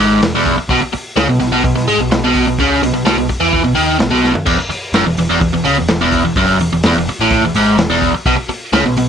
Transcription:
0.00 picked electric bass G#1, overdriven electric guitar G#2
0.22 picked electric bass E1, overdriven electric guitar E2, snare, open hi-hat
0.35 picked electric bass E1, overdriven electric guitar E2
0.45 kick, open hi-hat
0.58 muted overdriven electric guitar stroke, muted picked electric bass stroke
0.69 picked electric bass B1, overdriven electric guitar B2, kick, open hi-hat
0.82 muted overdriven electric guitar stroke, muted picked electric bass stroke
0.93 muted overdriven electric guitar stroke, muted picked electric bass stroke, open hi-hat
1.16 picked electric bass C#2, overdriven electric guitar C#3, snare, open hi-hat
1.29 picked electric bass B1, overdriven electric guitar B2
1.40 picked electric bass B1, overdriven electric guitar B2, snare, open hi-hat
1.52 picked electric bass B1, overdriven electric guitar B2
1.64 picked electric bass B1, overdriven electric guitar B2, kick, open hi-hat
1.75 picked electric bass B1, overdriven electric guitar B2, snare
1.86 picked electric bass G#2, overdriven electric guitar G#3, open hi-hat
1.98 picked electric bass B1, overdriven electric guitar B2
2.09 picked electric bass B1, overdriven electric guitar B2, snare, open hi-hat
2.21 picked electric bass B1, overdriven electric guitar B2
2.35 kick, open hi-hat
2.45 picked electric bass B1, overdriven electric guitar B2
2.59 picked electric bass C#2, overdriven electric guitar C#3, kick, open hi-hat
2.82 picked electric bass B1, overdriven electric guitar B2, open hi-hat
2.93 picked electric bass B1, overdriven electric guitar B2
3.05 picked electric bass B1, overdriven electric guitar B2, snare, open hi-hat
3.18 picked electric bass B1, overdriven electric guitar B2
3.29 muted picked electric bass stroke, muted overdriven electric guitar stroke, kick, open hi-hat
3.40 picked electric bass E2, overdriven electric guitar E3
3.53 kick, open hi-hat
3.64 picked electric bass B1, overdriven electric guitar B2
3.75 picked electric bass D#2, overdriven electric guitar D#3, open hi-hat
3.99 picked electric bass B1, overdriven electric guitar B2, snare, open hi-hat
4.10 picked electric bass B1, overdriven electric guitar B2
4.24 snare
4.34 muted overdriven electric guitar stroke, muted picked electric bass stroke, floor tom
4.46 picked electric bass E1, overdriven electric guitar E2, kick, crash
4.58 muted picked electric bass stroke, muted overdriven electric guitar stroke
4.69 muted picked electric bass stroke, muted overdriven electric guitar stroke, open hi-hat
4.93 picked electric bass F#1, overdriven electric guitar F#2, snare, open hi-hat
5.06 picked electric bass E1, overdriven electric guitar E2
5.17 picked electric bass E1, overdriven electric guitar E2, open hi-hat
5.30 picked electric bass E1, overdriven electric guitar E2
5.41 picked electric bass E1, overdriven electric guitar E2, kick, open hi-hat
5.53 picked electric bass E1, overdriven electric guitar E2
5.65 picked electric bass C#2, overdriven electric guitar C#3, open hi-hat
5.78 picked electric bass E1, overdriven electric guitar E2
5.88 picked electric bass E1, overdriven electric guitar E2, snare, open hi-hat
6.01 picked electric bass E1, overdriven electric guitar E2
6.12 kick, open hi-hat
6.25 picked electric bass E1, overdriven electric guitar E2
6.36 picked electric bass F#1, overdriven electric guitar F#2, kick, open hi-hat
6.59 picked electric bass E1, overdriven electric guitar E2, open hi-hat
6.72 picked electric bass E1, overdriven electric guitar E2
6.83 picked electric bass E1, overdriven electric guitar E2, snare, open hi-hat
6.97 picked electric bass E1, overdriven electric guitar E2
7.07 muted overdriven electric guitar stroke, muted picked electric bass stroke, open hi-hat
7.20 picked electric bass A1, overdriven electric guitar A2
7.31 kick, open hi-hat
7.42 picked electric bass E1, overdriven electric guitar E2
7.54 picked electric bass G#1, overdriven electric guitar G#2, open hi-hat
7.78 picked electric bass E1, overdriven electric guitar E2, snare, open hi-hat
7.90 picked electric bass E1, overdriven electric guitar E2
8.02 kick, open hi-hat
8.13 muted picked electric bass stroke, muted overdriven electric guitar stroke
8.26 picked electric bass B1, overdriven electric guitar B2, kick, open hi-hat
8.36 muted overdriven electric guitar stroke, muted picked electric bass stroke
8.49 muted picked electric bass stroke, muted overdriven electric guitar stroke, open hi-hat
8.73 picked electric bass C#2, overdriven electric guitar C#3, snare, open hi-hat
8.85 picked electric bass B1, overdriven electric guitar B2
8.96 picked electric bass B1, overdriven electric guitar B2, open hi-hat

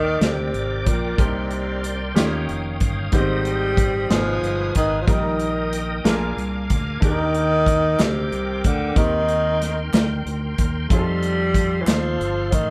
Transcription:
Already playing: fingered electric bass D#2, upright piano D#3 A#3 D4 D#4 G4 A#4, tenor saxophone D#3, tonewheel organ A#4 D5 G5 D6
0.21 fingered electric bass D2, tenor saxophone C3, snare, closed hi-hat
0.54 fingered electric bass G#1, closed hi-hat
0.86 fingered electric bass A#1, tenor saxophone A#2, kick, closed hi-hat
1.18 fingered electric bass C2, upright piano C3 A#3 C4 D4 G4 A#4, tenor saxophone C3, tonewheel organ C6, kick, closed hi-hat
1.25 upright piano D#4
1.51 closed hi-hat
1.84 closed hi-hat
2.14 fingered electric bass D#2, upright piano D#3 A#3 C#4 D#4 F4 G4, tonewheel organ C#5 F5 D#6, snare, closed hi-hat
2.49 fingered electric bass F1, closed hi-hat
2.80 fingered electric bass G1, kick, closed hi-hat
3.12 fingered electric bass G#1, upright piano G#2 D#3 B3 D#4 G4 C5, tenor saxophone G3, tonewheel organ C5 D#5 G5, kick, closed hi-hat
3.19 upright piano C4
3.45 closed hi-hat
3.77 kick, closed hi-hat
4.10 fingered electric bass G#1, upright piano B2 G#3 B3 D#4 F4 G#4, tenor saxophone F3, tonewheel organ B4 F5 G#5, snare, closed hi-hat
4.42 fingered electric bass G1, closed hi-hat
4.75 fingered electric bass G#1, tenor saxophone D#3, kick, closed hi-hat
5.01 tenor saxophone F3
5.07 fingered electric bass A#1, upright piano A#2 G3 A#3 D#4 G4 A#4, tenor saxophone D#3, tonewheel organ A#4 D#5 G5 D#6, kick, closed hi-hat
5.40 closed hi-hat
5.73 closed hi-hat
6.04 fingered electric bass A#1, upright piano A#2 A#3 D4 F4 G#4 A#4, tonewheel organ F5 G#5 D6, snare, closed hi-hat
6.37 fingered electric bass C2, closed hi-hat
6.70 fingered electric bass D2, kick, closed hi-hat
7.00 fingered electric bass D#2, upright piano D#3 A#3 D4 G4 G#4, tonewheel organ G5 D6, kick, closed hi-hat
7.05 tenor saxophone D#3
7.10 upright piano A#4
7.34 closed hi-hat
7.66 kick, closed hi-hat
7.99 fingered electric bass D2, tenor saxophone C3, snare, clap, closed hi-hat
8.32 fingered electric bass C2, closed hi-hat
8.64 fingered electric bass D2, tenor saxophone D3, kick, closed hi-hat
8.94 fingered electric bass D#2, upright piano D#3 A#3 C4 D#4 G4 A#4, tenor saxophone D#3, tonewheel organ C6, kick, closed hi-hat
9.29 closed hi-hat
9.61 snare, closed hi-hat
9.93 fingered electric bass D2, snare, clap, closed hi-hat
10.26 fingered electric bass D2, closed hi-hat
10.58 fingered electric bass D#2, kick, closed hi-hat
10.89 fingered electric bass F2, tenor saxophone G3, upright piano A3 C4 D#4 F4 G#4, tonewheel organ A4 F5, kick, closed hi-hat
10.98 upright piano A4
11.23 closed hi-hat
11.54 kick, closed hi-hat
11.81 tenor saxophone E3
11.87 fingered electric bass D#2, tenor saxophone F3, snare, clap, closed hi-hat
12.20 fingered electric bass G1, closed hi-hat
12.52 fingered electric bass A1, tenor saxophone D#3, kick, closed hi-hat

